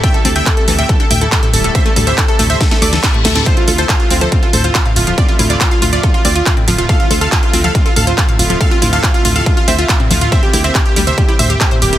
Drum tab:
HH |xxoxxxoxxxoxxxox|xxoxxxoxxxoxxxox|xxoxxxoxxxoxxxox|xxoxxxoxxxoxxxox|
CP |----x-------x---|---xx-------x---|----x-------x---|---xx-------x---|
SD |----------------|--------oo-oo-oo|----------------|----------------|
T2 |----------o--o--|--o---o------o-o|----------o--o--|--o---o------o-o|
BD |o---o---o---o---|o---o---o---o---|o---o---o---o---|o---o---o---o---|

HH |xxoxxxoxxxoxxxox|xxoxxxoxxxoxxxox|xxoxxxoxxxoxxxox|
CP |----x-------x---|---xx-------x---|----x-------x---|
SD |----------------|----------------|----------------|
T2 |----------o--o--|--o---o------o-o|----------o--o--|
BD |o---o---o---o---|o---o---o---o---|o---o---o---o---|